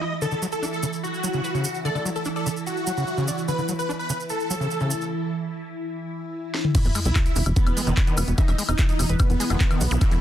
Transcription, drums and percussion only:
0.22 maracas medium
0.31 maracas soft
0.42 maracas medium
0.52 maracas soft
0.63 maracas soft
0.73 maracas soft
0.83 maracas medium
0.93 maracas soft
1.04 maracas soft
1.14 maracas soft
1.24 maracas medium
1.33 maracas soft
1.44 maracas soft
1.55 maracas soft
1.64 maracas medium
1.74 maracas soft
1.85 maracas soft
1.95 maracas soft
2.06 maracas medium
2.16 maracas soft
2.25 maracas soft
2.36 maracas soft
2.46 maracas medium
2.57 maracas soft
2.67 maracas soft
2.77 maracas soft
2.87 maracas loud
2.97 maracas soft
3.07 maracas soft
3.18 maracas soft
3.28 maracas medium
3.38 maracas soft
3.48 maracas medium
3.58 maracas soft
3.68 maracas medium
3.79 maracas soft
3.90 maracas soft
4.00 maracas soft
4.09 maracas medium
4.20 maracas soft
4.29 maracas soft
4.40 maracas soft
4.50 maracas medium
4.61 maracas soft
4.71 maracas soft
4.80 maracas soft
4.90 maracas loud
5.01 maracas soft
6.54 snare medium
6.65 mid tom medium
6.75 kick loud
6.75 closed hi-hat medium
6.75 crash loud
6.75 maracas medium
6.85 closed hi-hat soft
6.85 maracas soft
6.95 open hi-hat loud
6.95 high woodblock soft
6.95 maracas loud
7.05 closed hi-hat soft
7.05 maracas soft
7.15 kick loud
7.15 clap loud
7.15 closed hi-hat medium
7.15 high woodblock medium
7.15 maracas soft
7.26 closed hi-hat soft
7.26 maracas soft
7.36 open hi-hat loud
7.36 maracas medium
7.46 closed hi-hat soft
7.46 high woodblock soft
7.46 maracas soft
7.56 kick loud
7.56 closed hi-hat medium
7.56 maracas medium
7.67 closed hi-hat soft
7.67 high woodblock medium
7.67 maracas soft
7.77 open hi-hat loud
7.77 maracas loud
7.87 closed hi-hat soft
7.87 maracas soft
7.97 kick loud
7.97 clap loud
7.97 closed hi-hat medium
7.97 high woodblock soft
7.97 maracas medium
8.07 closed hi-hat soft
8.07 maracas soft
8.17 open hi-hat loud
8.17 high woodblock medium
8.17 maracas loud
8.28 closed hi-hat soft
8.28 maracas soft
8.38 kick loud
8.38 closed hi-hat medium
8.38 maracas medium
8.48 closed hi-hat soft
8.48 high woodblock soft
8.48 maracas soft
8.58 open hi-hat loud
8.58 maracas medium
8.69 closed hi-hat soft
8.69 high woodblock medium
8.69 maracas soft
8.78 kick loud
8.78 clap loud
8.78 closed hi-hat medium
8.78 maracas medium
8.89 closed hi-hat soft
8.89 maracas soft
8.99 open hi-hat loud
8.99 high woodblock soft
8.99 maracas loud
9.09 closed hi-hat soft
9.09 maracas soft
9.19 kick loud
9.19 closed hi-hat medium
9.19 high woodblock medium
9.19 maracas medium
9.30 closed hi-hat soft
9.30 maracas soft
9.40 open hi-hat loud
9.40 maracas loud
9.50 closed hi-hat soft
9.50 high woodblock soft
9.50 maracas soft
9.60 kick loud
9.60 clap loud
9.60 closed hi-hat medium
9.60 maracas medium
9.71 closed hi-hat soft
9.71 high woodblock medium
9.71 maracas soft
9.81 open hi-hat loud
9.81 maracas medium
9.91 closed hi-hat soft
9.91 maracas soft
10.01 kick loud
10.01 closed hi-hat medium
10.01 high woodblock soft
10.01 maracas medium
10.12 closed hi-hat soft
10.12 maracas soft

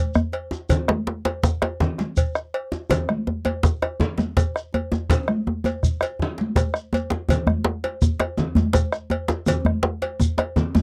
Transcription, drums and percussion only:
0.14 bombo rim medium
0.14 djembe slap soft
0.14 djembe bass medium
0.14 shekere soft
0.32 bombo rim soft
0.32 cowbell soft
0.32 djembe slap soft
0.51 djembe slap medium
0.51 djembe tone medium
0.51 shekere soft
0.69 bombo low loud
0.69 cowbell medium
0.69 djembe bass medium
0.69 low conga medium
0.69 shekere medium
0.88 bombo rim medium
0.88 djembe slap loud
0.88 high conga medium
1.07 djembe slap medium
1.25 cowbell soft
1.25 djembe slap medium
1.43 bombo low medium
1.43 djembe slap loud
1.43 shekere medium
1.62 bombo rim medium
1.62 cowbell soft
1.62 djembe slap medium
1.62 djembe tone medium
1.80 djembe slap medium
1.80 djembe slap soft
1.80 high conga soft
1.80 djembe bass medium
1.80 low conga medium
1.80 shekere soft
1.98 bombo rim soft
1.98 djembe slap medium
1.98 high conga medium
1.98 shekere soft
2.17 bombo low loud
2.17 cowbell soft
2.17 shekere medium
2.35 bombo rim medium
2.35 djembe slap soft
2.35 shekere soft
2.54 bombo rim soft
2.54 cowbell soft
2.54 djembe slap soft
2.72 djembe slap medium
2.72 djembe tone medium
2.72 shekere soft
2.90 bombo low medium
2.90 cowbell medium
2.90 djembe slap loud
2.90 djembe bass medium
2.90 low conga medium
2.90 shekere soft
3.09 bombo rim medium
3.09 high conga medium
3.27 djembe tone medium
3.45 cowbell medium
3.45 djembe slap medium
3.45 djembe tone medium
3.63 bombo low loud
3.63 djembe slap loud
3.63 shekere medium
3.82 bombo rim medium
3.82 cowbell medium
3.82 djembe slap soft
3.82 djembe tone medium
4.00 djembe slap soft
4.00 djembe tone medium
4.00 high conga soft
4.00 djembe bass medium
4.00 low conga medium
4.00 shekere soft
4.18 bombo rim soft
4.18 djembe slap medium
4.18 djembe tone medium
4.18 high conga medium
4.18 shekere soft
4.37 bombo low loud
4.37 cowbell medium
4.37 djembe slap medium
4.37 shekere medium
4.54 bombo rim medium
4.54 djembe slap soft
4.54 shekere soft
4.73 cowbell soft
4.73 djembe slap soft
4.73 djembe tone medium
4.92 djembe slap medium
4.92 djembe tone medium
4.92 shekere soft
5.10 bombo rim soft
5.10 bombo low loud
5.10 cowbell medium
5.10 djembe slap soft
5.10 djembe slap medium
5.10 djembe bass medium
5.10 low conga medium
5.10 shekere medium
5.28 bombo rim medium
5.28 high conga medium
5.47 djembe slap soft
5.47 djembe tone medium
5.64 cowbell medium
5.64 djembe slap medium
5.64 djembe tone medium
5.64 shekere soft
5.83 bombo rim soft
5.83 bombo low medium
5.83 djembe slap soft
5.83 high conga soft
5.83 shekere medium
6.01 bombo rim medium
6.01 cowbell medium
6.01 djembe tone medium
6.01 shekere soft
6.19 djembe slap soft
6.19 djembe bass medium
6.19 low conga medium
6.38 djembe slap medium
6.38 high conga medium
6.56 bombo low loud
6.56 cowbell soft
6.56 djembe slap medium
6.56 shekere medium
6.74 bombo rim medium
6.74 shekere soft
6.93 cowbell medium
6.93 djembe tone medium
6.93 high conga soft
6.93 shekere soft
7.10 djembe slap medium
7.10 djembe tone medium
7.10 high conga soft
7.29 bombo low medium
7.29 cowbell medium
7.29 djembe tone medium
7.29 djembe bass medium
7.29 low conga medium
7.29 shekere soft
7.47 bombo rim medium
7.47 djembe slap soft
7.47 high conga medium
7.47 djembe bass medium
7.64 djembe slap loud
7.84 cowbell medium
7.84 djembe slap medium
8.02 bombo low medium
8.02 djembe tone medium
8.02 shekere medium
8.20 bombo rim medium
8.20 cowbell medium
8.20 djembe slap medium
8.20 djembe slap soft
8.20 djembe tone medium
8.38 djembe slap soft
8.38 djembe tone medium
8.38 high conga soft
8.38 djembe bass medium
8.38 low conga medium
8.38 shekere soft
8.55 bombo rim soft
8.55 djembe slap medium
8.55 high conga medium
8.55 djembe bass medium
8.55 shekere soft
8.73 bombo low loud
8.73 cowbell medium
8.73 djembe slap medium
8.73 shekere medium
8.93 bombo rim medium
8.93 djembe slap soft
8.93 shekere soft
9.10 bombo rim soft
9.10 cowbell medium
9.10 djembe slap soft
9.10 djembe tone medium
9.28 djembe slap medium
9.28 djembe tone medium
9.28 shekere soft
9.46 bombo low medium
9.46 cowbell medium
9.46 djembe tone medium
9.46 djembe bass medium
9.46 low conga medium
9.46 shekere medium
9.65 bombo rim medium
9.65 high conga medium
9.65 djembe bass medium
9.83 djembe slap loud
10.02 cowbell medium
10.02 djembe slap medium
10.20 bombo low medium
10.20 djembe tone medium
10.20 shekere medium
10.38 bombo rim medium
10.38 cowbell medium
10.38 djembe slap soft
10.38 djembe slap medium
10.38 djembe tone medium
10.56 djembe slap soft
10.56 djembe tone medium
10.56 high conga soft
10.56 djembe bass medium
10.56 low conga medium
10.56 shekere soft
10.75 bombo rim soft
10.75 djembe slap medium
10.75 high conga medium
10.75 djembe bass medium
10.75 shekere soft

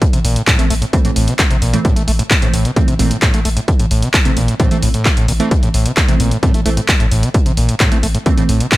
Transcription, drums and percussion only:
0.02 kick loud
0.02 closed hi-hat medium
0.13 closed hi-hat medium
0.25 open hi-hat loud
0.36 closed hi-hat medium
0.47 kick loud
0.47 clap loud
0.47 closed hi-hat medium
0.59 closed hi-hat medium
0.70 open hi-hat loud
0.82 closed hi-hat medium
0.93 kick loud
0.93 closed hi-hat medium
1.05 closed hi-hat medium
1.16 open hi-hat loud
1.28 closed hi-hat medium
1.39 kick loud
1.39 clap loud
1.39 closed hi-hat medium
1.51 closed hi-hat medium
1.62 open hi-hat loud
1.73 closed hi-hat medium
1.85 kick loud
1.85 closed hi-hat medium
1.96 closed hi-hat medium
2.08 open hi-hat loud
2.19 closed hi-hat medium
2.31 kick loud
2.31 clap loud
2.31 closed hi-hat medium
2.42 closed hi-hat medium
2.54 open hi-hat loud
2.65 closed hi-hat medium
2.76 kick loud
2.76 closed hi-hat medium
2.88 closed hi-hat medium
2.99 open hi-hat loud
3.11 closed hi-hat medium
3.22 kick loud
3.22 clap loud
3.22 closed hi-hat medium
3.34 closed hi-hat medium
3.45 open hi-hat loud
3.57 closed hi-hat medium
3.68 kick loud
3.68 closed hi-hat medium
3.80 closed hi-hat medium
3.91 open hi-hat loud
4.02 closed hi-hat medium
4.14 kick loud
4.14 clap loud
4.14 closed hi-hat medium
4.25 closed hi-hat medium
4.37 open hi-hat loud
4.48 closed hi-hat medium
4.60 kick loud
4.60 closed hi-hat medium
4.71 closed hi-hat medium
4.83 open hi-hat loud
4.94 closed hi-hat medium
5.05 kick loud
5.05 clap loud
5.05 closed hi-hat medium
5.17 closed hi-hat medium
5.28 open hi-hat loud
5.40 closed hi-hat medium
5.51 kick loud
5.51 closed hi-hat medium
5.63 closed hi-hat medium
5.74 open hi-hat loud
5.86 closed hi-hat medium
5.97 kick loud
5.97 clap loud
5.97 closed hi-hat medium
6.08 closed hi-hat medium
6.20 open hi-hat loud
6.31 closed hi-hat medium
6.43 kick loud
6.43 closed hi-hat medium
6.54 closed hi-hat medium
6.66 open hi-hat loud
6.77 closed hi-hat medium
6.89 kick loud
6.89 clap loud
6.89 closed hi-hat medium
7.00 closed hi-hat medium
7.11 open hi-hat medium
7.23 closed hi-hat medium
7.34 kick loud
7.34 closed hi-hat medium
7.46 closed hi-hat medium
7.57 open hi-hat loud
7.69 closed hi-hat medium
7.80 kick loud
7.80 clap loud
7.80 closed hi-hat medium
7.92 closed hi-hat medium
8.03 open hi-hat loud
8.15 closed hi-hat medium
8.26 kick loud
8.26 closed hi-hat medium
8.38 closed hi-hat medium
8.49 open hi-hat loud
8.60 closed hi-hat medium
8.72 kick loud
8.72 clap loud
8.72 closed hi-hat medium

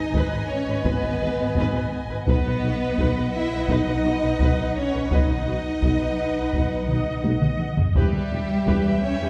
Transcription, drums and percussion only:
0.14 taiko medium
0.85 taiko medium
1.56 taiko medium
2.27 taiko medium
2.98 taiko medium
3.68 taiko medium
4.40 taiko medium
5.11 taiko medium
5.29 taiko mid soft
5.82 taiko medium
6.53 taiko medium
6.89 taiko mid medium
7.24 taiko high medium
7.42 taiko mid medium
7.59 taiko mid medium
7.77 taiko low medium
7.95 taiko medium
8.13 taiko mid soft
8.66 taiko medium

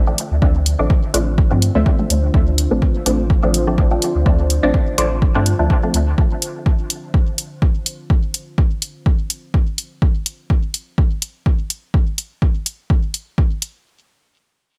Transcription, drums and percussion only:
0.18 closed hi-hat medium
0.42 kick loud
0.66 closed hi-hat medium
0.90 kick loud
1.14 closed hi-hat medium
1.38 kick loud
1.62 closed hi-hat medium
1.86 kick loud
2.10 closed hi-hat medium
2.34 kick loud
2.58 closed hi-hat medium
2.82 kick loud
3.06 closed hi-hat medium
3.30 kick loud
3.54 closed hi-hat medium
3.78 kick loud
4.02 closed hi-hat medium
4.26 kick loud
4.50 closed hi-hat medium
4.74 kick loud
4.98 closed hi-hat medium
5.22 kick loud
5.46 closed hi-hat medium
5.70 kick loud
5.94 closed hi-hat medium
6.18 kick loud
6.42 closed hi-hat medium
6.66 kick loud
6.90 closed hi-hat medium
7.14 kick loud
7.38 closed hi-hat medium
7.62 kick loud
7.86 closed hi-hat medium
8.10 kick loud
8.34 closed hi-hat medium
8.58 kick loud
8.82 closed hi-hat medium
9.06 kick loud
9.30 closed hi-hat medium
9.54 kick medium
9.78 closed hi-hat medium
10.02 kick loud
10.26 closed hi-hat medium
10.50 kick medium
10.74 closed hi-hat medium
10.98 kick loud
11.22 closed hi-hat medium
11.46 kick medium
11.70 closed hi-hat medium
11.94 kick loud
12.18 closed hi-hat medium
12.42 kick loud
12.66 closed hi-hat medium
12.90 kick loud
13.14 closed hi-hat medium
13.38 kick loud
13.62 closed hi-hat medium

